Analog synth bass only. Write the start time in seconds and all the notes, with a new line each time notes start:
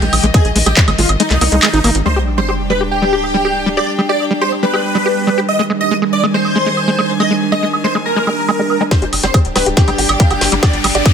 0.02 A#1
0.13 A#1
0.23 A#1
0.45 A#1
0.56 A#1
0.66 A#1
0.88 G#1
0.98 G#1
1.09 G#1
1.31 C2
1.41 C2
1.52 C2
1.73 G#1
1.84 G#1
1.95 G#1
9.02 G1
9.13 G1
9.23 G1
9.45 D1
9.56 D1
9.66 D1
9.88 G#1
9.98 G#1
10.09 G#1
10.31 G1
10.41 G1
10.52 G1
10.73 G#1
10.84 G#1
10.95 G#1